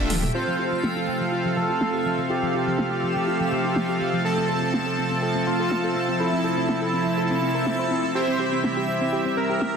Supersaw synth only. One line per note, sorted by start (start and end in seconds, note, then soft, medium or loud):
0.34 4.22 C4 medium
0.34 4.22 F4 medium
0.34 4.22 A4 medium
0.34 4.22 F5 medium
4.25 8.12 F3 medium
4.25 8.12 C4 medium
4.25 8.12 A4 medium
4.25 8.12 A5 medium
8.15 9.77 C4 medium
8.15 9.77 E4 medium
8.15 9.77 G4 medium
8.15 9.77 E5 medium